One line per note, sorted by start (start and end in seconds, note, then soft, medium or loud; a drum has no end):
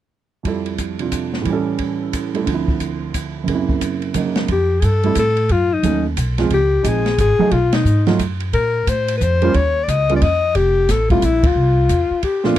0.43 1.45 F2 soft
0.43 1.45 F3 soft
0.43 1.45 G3 soft
0.43 1.46 E4 soft
0.43 kick soft
0.43 ride soft
0.48 1.47 A4 soft
0.66 ride soft
0.78 kick soft
0.78 hi-hat pedal soft
0.78 ride soft
0.99 1.45 C3 soft
0.99 1.46 D4 soft
0.99 1.47 F4 soft
0.99 ride soft
1.12 kick soft
1.12 hi-hat pedal soft
1.12 ride medium
1.33 snare soft
1.42 2.45 A2 medium
1.42 2.46 E3 soft
1.42 ride soft
1.46 2.32 G3 medium
1.46 kick soft
1.50 2.49 C#4 soft
1.50 2.35 A4 medium
1.79 kick soft
1.79 ride soft
2.13 kick soft
2.13 hi-hat pedal soft
2.13 ride medium
2.34 2.46 G3 soft
2.34 2.47 A3 soft
2.34 2.47 E4 soft
2.34 2.48 A4 soft
2.34 ride soft
2.44 3.46 D2 soft
2.44 3.47 D3 soft
2.44 kick soft
2.44 ride medium
2.49 3.49 F3 soft
2.49 3.50 C4 soft
2.54 3.51 E4 soft
2.68 kick soft
2.80 kick soft
2.80 hi-hat pedal soft
2.80 ride soft
3.14 kick soft
3.14 hi-hat pedal soft
3.14 ride medium
3.44 4.47 F#2 soft
3.44 4.12 C#3 soft
3.48 4.14 A#3 soft
3.48 4.50 C4 soft
3.48 kick soft
3.48 ride medium
3.54 4.52 E4 medium
3.69 kick soft
3.81 kick soft
3.81 hi-hat pedal soft
3.81 ride medium
4.02 ride soft
4.14 4.48 C#3 soft
4.14 4.49 F#3 soft
4.14 4.49 A#3 soft
4.14 4.49 D#4 soft
4.14 kick soft
4.14 hi-hat pedal soft
4.14 ride medium
4.36 snare soft
4.36 ride soft
4.48 4.81 F2 medium
4.48 4.82 G4 medium
4.48 kick soft
4.48 ride medium
4.80 5.15 G2 medium
4.80 4.87 G#4 medium
4.80 kick soft
4.80 hi-hat pedal soft
4.80 ride medium
4.85 5.17 A4 medium
5.03 5.15 G3 medium
5.03 5.15 A3 soft
5.03 5.15 C4 soft
5.03 5.16 E4 medium
5.03 ride soft
5.15 5.48 A2 medium
5.15 kick soft
5.15 hi-hat pedal medium
5.15 ride medium
5.19 5.53 A4 medium
5.37 ride soft
5.49 5.82 F#2 medium
5.49 5.75 F4 medium
5.49 kick soft
5.49 ride soft
5.74 6.06 D#4 medium
5.83 6.16 D#2 medium
5.83 6.02 F#3 soft
5.83 6.03 A3 soft
5.83 6.03 C#4 soft
5.83 6.03 D#4 soft
5.83 kick soft
5.83 hi-hat pedal soft
5.83 ride medium
6.17 6.50 B1 medium
6.17 kick soft
6.17 hi-hat pedal soft
6.17 ride medium
6.38 6.49 F3 medium
6.38 6.50 G#3 medium
6.38 6.50 C4 medium
6.38 6.50 F4 medium
6.38 snare soft
6.38 ride soft
6.50 6.83 C#2 medium
6.50 6.90 G4 medium
6.50 kick soft
6.50 ride medium
6.83 7.17 A#1 medium
6.83 7.02 F3 medium
6.83 7.02 G#3 medium
6.83 7.03 C4 soft
6.83 7.03 D#4 medium
6.83 kick soft
6.83 hi-hat pedal medium
6.83 ride medium
6.88 7.20 G#4 medium
7.06 snare soft
7.06 ride soft
7.18 7.38 G#1 medium
7.18 7.53 G#4 loud
7.18 kick soft
7.18 hi-hat pedal medium
7.18 ride medium
7.38 7.50 F#3 medium
7.38 7.51 A3 medium
7.38 7.51 D#4 medium
7.38 7.51 G#4 medium
7.38 muted upright bass stroke soft
7.51 7.84 B1 medium
7.51 7.76 F4 medium
7.51 kick soft
7.51 ride soft
7.73 8.07 D#4 medium
7.73 snare medium
7.73 ride medium
7.85 8.18 G#2 medium
7.85 hi-hat pedal medium
8.07 8.18 F#3 medium
8.07 8.18 A3 medium
8.07 8.18 D#4 medium
8.07 8.18 F4 medium
8.07 snare soft
8.07 ride soft
8.19 8.52 F#2 medium
8.19 kick soft
8.19 hi-hat pedal soft
8.19 ride medium
8.40 ride soft
8.53 8.86 A#2 medium
8.53 8.90 A#4 medium
8.53 kick soft
8.53 ride medium
8.87 9.19 A2 medium
8.87 9.16 C5 medium
8.87 kick soft
8.87 hi-hat pedal medium
8.87 ride medium
9.08 ride medium
9.17 9.53 F2 medium
9.17 9.24 B4 medium
9.17 kick soft
9.17 hi-hat pedal medium
9.23 9.57 C5 medium
9.42 9.53 G3 medium
9.42 9.53 A#3 medium
9.42 9.53 C#4 medium
9.42 9.54 F4 medium
9.42 ride soft
9.54 9.87 D#2 medium
9.54 9.85 C#5 medium
9.54 kick soft
9.54 ride soft
9.84 9.91 D5 medium
9.88 10.21 C#2 medium
9.88 10.15 D#5 medium
9.88 kick soft
9.88 hi-hat pedal soft
9.88 ride medium
10.09 10.20 G3 medium
10.09 10.21 A#3 medium
10.09 10.21 C#4 medium
10.09 10.21 F4 medium
10.09 ride soft
10.16 10.24 D5 medium
10.22 10.54 F2 medium
10.22 10.58 D#5 loud
10.22 kick soft
10.22 ride medium
10.55 10.88 F1 medium
10.55 10.92 G4 medium
10.55 kick soft
10.55 ride medium
10.89 11.21 A1 medium
10.89 11.10 A4 medium
10.89 kick soft
10.89 snare soft
10.89 hi-hat pedal medium
10.89 ride medium
11.10 11.22 G3 medium
11.10 11.22 A3 medium
11.10 11.22 C4 soft
11.10 11.22 E4 medium
11.10 11.26 F4 medium
11.10 kick medium
11.10 ride soft
11.22 11.55 A#1 medium
11.22 11.48 E4 medium
11.22 kick soft
11.22 hi-hat pedal medium
11.22 ride medium
11.43 12.24 F4 medium
11.43 kick medium
11.43 ride medium
11.55 11.88 C2 medium
11.89 12.09 E2 medium
11.89 kick soft
11.89 hi-hat pedal medium
11.89 ride medium
12.10 muted upright bass stroke soft
12.23 12.43 G4 medium
12.23 kick soft
12.23 ride medium
12.44 12.55 A#2 medium
12.44 12.56 F3 medium
12.44 12.56 A3 medium
12.44 12.56 C4 medium
12.44 12.56 D4 medium
12.44 12.59 F4 medium
12.44 snare soft